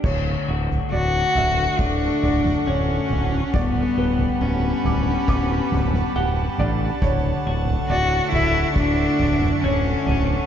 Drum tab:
CC |x---------------|----------------|----------------|
T2 |----------oo----|----------oo----|----------oo----|
FT |o--o--o---o---o-|o--o--o---o---o-|o--o--o---o---o-|
BD |o-------o-------|o-------o-------|o-------o-------|